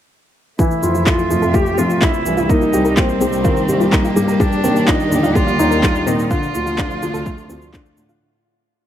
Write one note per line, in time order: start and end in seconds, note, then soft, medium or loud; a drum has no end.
0.59 4.36 C3 medium
0.59 0.73 E3 medium
0.59 2.48 A3 medium
0.59 1.09 E4 medium
0.59 0.68 F4 medium
0.59 2.48 E5 medium
0.59 kick medium
0.59 shaker soft
0.71 shaker soft
0.83 1.01 F2 medium
0.83 1.06 F4 medium
0.83 shaker medium
0.95 1.01 F4 medium
0.95 shaker soft
1.06 1.20 E4 medium
1.06 1.56 F4 medium
1.06 1.13 A4 medium
1.06 kick medium
1.06 clap medium
1.06 shaker soft
1.18 1.27 F4 medium
1.18 shaker soft
1.30 1.40 F2 medium
1.30 1.53 F3 medium
1.30 shaker medium
1.42 1.61 F2 medium
1.42 1.46 A4 medium
1.42 shaker soft
1.54 1.68 A3 medium
1.54 1.60 F4 loud
1.54 1.80 G4 loud
1.54 kick medium
1.54 shaker soft
1.66 shaker soft
1.78 1.96 F2 medium
1.78 2.01 F3 medium
1.78 1.84 C4 medium
1.78 2.04 F4 medium
1.78 shaker medium
1.90 shaker soft
2.01 2.51 E4 medium
2.01 2.25 E4 medium
2.01 2.11 F4 medium
2.01 kick loud
2.01 clap medium
2.01 shaker soft
2.14 shaker soft
2.25 2.44 C2 medium
2.25 2.49 E3 medium
2.25 shaker medium
2.37 2.43 F4 medium
2.37 shaker soft
2.49 6.27 G3 medium
2.49 6.27 A#3 medium
2.49 2.72 A#3 medium
2.49 2.99 D#4 loud
2.49 4.38 D#4 medium
2.49 6.27 G4 medium
2.49 2.55 A#4 medium
2.49 kick loud
2.49 shaker soft
2.61 2.70 F4 medium
2.61 shaker soft
2.73 2.91 C2 medium
2.73 2.87 G4 medium
2.73 shaker medium
2.85 2.89 A#4 medium
2.85 shaker soft
2.97 3.20 A#3 medium
2.97 3.94 C4 medium
2.97 3.03 F4 loud
2.97 kick loud
2.97 clap medium
2.97 shaker soft
3.09 shaker soft
3.21 3.30 C2 medium
3.21 3.44 G3 medium
3.21 3.27 C4 medium
3.21 shaker medium
3.33 3.51 C2 medium
3.33 shaker soft
3.44 3.59 D#3 medium
3.44 3.54 F4 loud
3.44 kick medium
3.44 shaker soft
3.57 shaker soft
3.68 3.87 C2 medium
3.68 3.91 G4 medium
3.68 shaker medium
3.80 3.86 F4 medium
3.80 shaker soft
3.92 4.41 A#3 medium
3.92 4.06 D#4 medium
3.92 3.98 A#4 medium
3.92 kick loud
3.92 clap medium
3.92 shaker soft
4.04 4.13 F4 medium
4.04 shaker soft
4.16 4.34 G2 medium
4.16 4.39 G3 loud
4.16 shaker medium
4.28 4.32 A#4 medium
4.28 shaker soft
4.40 4.54 G3 loud
4.40 4.88 D4 loud
4.40 4.46 F4 medium
4.40 6.29 D5 medium
4.40 kick loud
4.40 shaker soft
4.52 shaker soft
4.64 4.82 D#2 medium
4.64 4.87 D#3 medium
4.64 4.70 C4 medium
4.64 shaker medium
4.76 shaker soft
4.87 5.10 D4 medium
4.87 5.37 D#4 medium
4.87 4.96 F4 loud
4.87 kick loud
4.87 clap medium
4.87 shaker soft
5.00 shaker soft
5.11 5.21 D#2 medium
5.11 5.34 D3 medium
5.11 shaker medium
5.23 5.42 D#2 medium
5.23 5.29 F4 medium
5.23 shaker soft
5.35 5.58 G3 medium
5.35 6.09 F4 loud
5.35 5.41 A#4 medium
5.35 kick loud
5.35 shaker soft
5.47 5.56 F4 medium
5.47 shaker soft
5.59 5.77 D#2 medium
5.59 5.73 D#4 loud
5.59 shaker medium
5.71 5.74 A#4 medium
5.71 shaker soft
5.83 6.06 G3 medium
5.83 5.89 F4 medium
5.83 kick loud
5.83 clap medium
5.83 shaker soft
5.95 shaker soft
6.06 6.25 A#2 medium
6.06 6.29 D#3 medium
6.06 6.13 C4 medium
6.06 6.30 D#4 medium
6.06 shaker medium
6.19 shaker soft
6.31 8.19 C3 medium
6.31 6.44 D3 loud
6.31 8.20 F3 medium
6.31 8.19 A3 medium
6.31 8.20 D4 medium
6.31 6.40 F4 loud
6.31 7.70 F4 loud
6.31 8.20 F4 medium
6.31 kick loud
6.31 shaker soft
6.43 shaker soft
6.55 6.73 D2 medium
6.55 6.77 F4 medium
6.55 shaker medium
6.66 6.72 F4 medium
6.66 shaker soft
6.78 6.92 D4 medium
6.78 6.84 A4 medium
6.78 kick loud
6.78 clap medium
6.78 shaker soft
6.90 6.99 F4 medium
6.90 shaker soft
7.02 7.11 D2 medium
7.02 7.25 F3 loud
7.02 shaker medium
7.14 7.32 D2 medium
7.14 7.17 A4 medium
7.14 shaker soft
7.26 7.40 A3 medium
7.26 7.32 F4 loud
7.26 kick loud
7.26 shaker soft
7.38 shaker soft
7.49 7.68 D2 medium
7.49 7.73 F3 medium
7.49 7.55 C4 medium
7.49 shaker medium
7.62 shaker soft
7.73 7.96 D4 medium
7.73 7.82 F4 loud
7.73 kick loud
7.73 clap medium
7.73 shaker soft
7.86 shaker soft
7.97 8.16 A2 medium
7.97 8.20 D3 medium
7.97 shaker medium
8.09 8.15 F4 medium
8.09 shaker soft